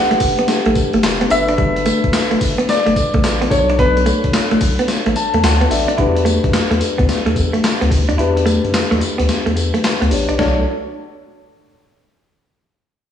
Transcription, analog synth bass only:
0.11 E1
0.21 E1
0.66 A1
0.94 G1
1.04 E1
1.31 G1
2.05 F#1
2.32 G1
2.41 G1
2.87 F#1
3.14 B1
3.24 A1
3.51 B1
4.24 A1
4.52 B1
4.61 B1
5.07 A1
5.34 E2
5.44 D2
5.71 A1
5.99 E2
6.44 F#2
6.71 E2
6.99 D2
7.09 E2
7.26 E2
7.82 D2
7.91 D2
8.09 D#2
8.19 E2
8.64 F#2
8.92 E2
9.20 D2
9.29 E2
9.47 E2
10.02 D2
10.11 A1
10.30 A#1
10.39 B1

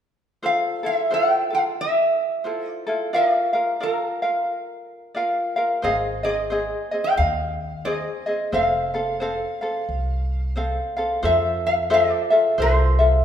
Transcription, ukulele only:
0.43 F4 A4 C5
0.83 E4 F4 A4
1.10 E4 F4 A4 C5
1.50 F4 A4
2.44 E4 F4 A4 C5
2.87 E4 F4 A4
3.13 F4 A#4 D5 F5
3.53 F4 A#4 F5
3.80 F4 A#4 D5 F5
4.22 F4 A#4 F5
5.15 F4 A#4 D5 F5
5.56 F4 A#4 F5
5.82 C4 G#4 C5 D#5
6.23 C4 G#4 D#5
6.50 C4 G#4 C5 D#5
6.91 C4 G#4 D#5
7.85 C4 G#4 C5 D#5
8.26 C4 G#4 D#5
8.52 C4 A4 C5 F5
8.94 C4 A4 F5
9.20 C4 A4 C5 F5
9.61 C4 A4 F5
10.56 C4 A4 C5 F5
10.97 C4 A4 F5
11.23 F4 A4 C5
11.90 F4 A4 C5 E5
12.30 F4 A4 E5
12.58 F4 A4 C5 E5
12.99 F4 A4 E5

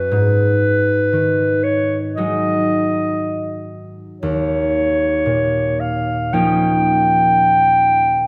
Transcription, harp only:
Already playing: F#2 C#4 E4 F#4
0.11 G#2
1.13 D#3
2.17 F#3 G#3 D#4
4.23 D#2
5.26 A#2
6.33 F3 A#3 C#4 D#4

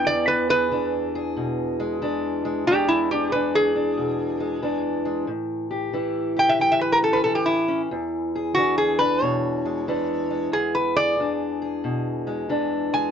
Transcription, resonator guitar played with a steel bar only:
0.07 D5
0.28 B4
0.50 B4
2.67 G4
2.88 E4
3.11 G4
3.32 B4
3.55 G#4
6.39 G5
6.49 E5
6.61 G5
6.72 E5
6.81 B4
6.92 A#4
7.04 A4
7.13 B4
7.24 A4
7.35 G4
7.46 E4
8.54 F#4
8.78 G#4
8.99 B4
9.22 C#5
10.53 G#4
10.75 B4
10.97 D5
12.94 G#5

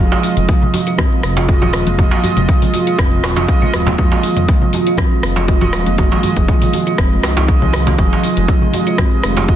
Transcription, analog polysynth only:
0.00 G#3 F4 D#5
1.48 G#3 F4 D#5
1.99 G#3 F4 D#5
3.48 G#3 F4 D#5
3.98 G#3 F4 D#5
5.48 G#3 F4 D#5
5.98 G#3 F4 D#5
7.49 G#3 F4 D#5
7.99 G#3 F4 D#5
9.48 G#3 F4 D#5

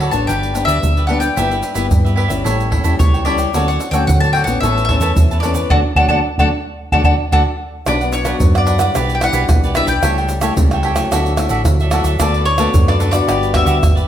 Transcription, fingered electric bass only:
0.12 A1
0.28 G1
0.66 D2
0.83 D2
1.37 G1
1.75 G1
1.92 G2
2.30 G1
2.45 A1
2.83 E2
2.99 C#2
3.54 D2
3.91 D2
4.07 D3
4.46 A#1
4.62 A1
4.99 E2
5.16 E2
5.70 D2
5.96 D2
6.09 D2
6.40 D2
6.93 D2
7.04 D2
7.33 D2
7.86 B1
8.40 F#2
8.95 B1
9.33 B1
9.48 B1
9.86 B1
10.03 C#2
10.56 C#2
11.11 D2
11.50 A1
11.66 D2
12.04 D2
12.20 D2
12.74 F#2
13.28 G1
13.66 D2
13.81 G1

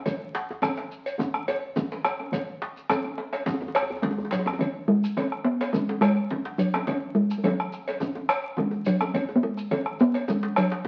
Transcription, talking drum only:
4.02 G#3
4.32 F#3
4.88 G#3
5.44 B3
5.73 G#3
6.01 G#3
6.58 F#3
7.15 G#3
7.38 G#3
7.44 F#3
8.58 G#3
8.87 F#3
9.36 B3
9.43 G#3
10.01 B3
10.29 G#3
10.58 F#3

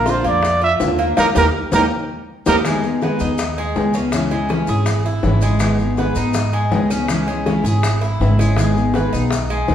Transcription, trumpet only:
Already playing: A#4
0.10 C5
0.27 D5
0.63 E5
1.18 A#4
1.37 A#4
1.74 A#4
2.48 A#4

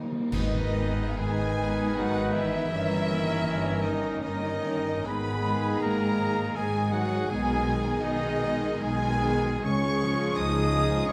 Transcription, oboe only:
0.33 D#4
1.19 G#4
1.96 F#4
2.33 E4
3.84 D#4
4.22 D#4
5.05 B4
5.82 A#4
6.56 G#4
6.93 F#4
7.30 G#4
8.02 D#4
8.82 G#4
9.64 C#5
10.37 D#5
11.09 C#5

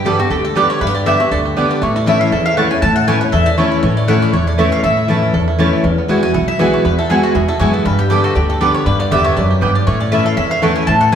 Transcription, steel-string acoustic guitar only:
Already playing: G2
0.05 D3 G3 B3 G4
0.19 B3 G4
0.30 D3
0.55 D3 G3 B3 G4
0.81 G2
1.06 D3 G3 B3 G4
1.19 B3 G4
1.31 D3
1.56 D3 G3 B3 G4
1.82 A2
2.06 E3 A3 C#4 E4
2.32 E2
2.57 E3 A3 C#4 E4
2.71 C#4 E4
2.82 A2
3.07 E3 A3 C#4 E4
3.21 C#4 E4
3.33 E2
3.58 E3 A3 C#4 E4
3.83 A2
4.08 E3 A3 C#4 E4
4.34 E2
4.58 E3 A3 C#4 E4
4.84 A2
5.08 E3 A3 C#4 E4
5.34 E2
5.59 E3 A3 C#4 E4
5.84 E2
6.08 E3 G#3 B3 F#4
6.22 B3 F#4
6.35 B2
6.59 E3 G#3 B3 F#4
6.85 E2
7.09 E3 G#3 B3 F#4
7.35 B2
7.60 E3 G#3 B3 F#4
7.85 G2
8.10 D3 G3 B3 G4
8.36 D3
8.60 D3 G3 B3 G4
8.87 G2
9.11 D3 G3 B3 G4
9.37 F#2
9.62 G2
9.87 A2
10.12 E3 A3 C#4 E4
10.37 E2
10.62 E3 A3 C#4 E4
10.88 A2
11.12 E3

